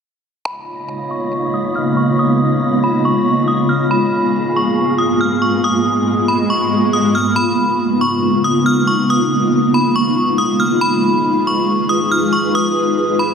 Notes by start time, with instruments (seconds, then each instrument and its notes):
0.45 ambient pad C#3 G#3 A#3 B3 D#4 F4, synth texture F4 C#5 D#5 B5 A#6, synth bell B5
1.11 synth bell C#6
1.54 synth bell D#6
1.76 synth bell F6
1.97 synth bell C#6
2.19 synth bell D#6
2.84 synth bell B5
3.05 synth bell C#6
3.48 synth bell D#6
3.69 synth bell F6
3.91 ambient pad G#2 G#3 A#3 B3, synth texture G#4 F5, synth bell B5, swell
4.56 synth bell C#6
4.98 synth bell D#6
5.21 synth bell F6
5.42 synth bell C#6
5.64 synth bell D#6
6.28 synth bell B5
6.50 synth bell C#6
6.93 synth bell D#6
7.15 synth bell F6
7.36 ambient pad C#3 G#3 A#3 B3 D#4 F4, synth bell B5
8.01 synth bell C#6
8.44 synth bell D#6
8.66 synth bell F6
8.87 synth bell C#6
9.10 synth bell D#6
9.74 synth bell B5
9.96 synth bell C#6
10.38 synth bell D#6
10.60 synth bell F6
10.81 ambient pad G#4 B4, synth bell B5
11.47 synth bell C#6
11.89 synth bell D#6
12.12 synth bell F6
12.33 synth bell C#6
12.55 synth bell D#6
13.19 synth bell B5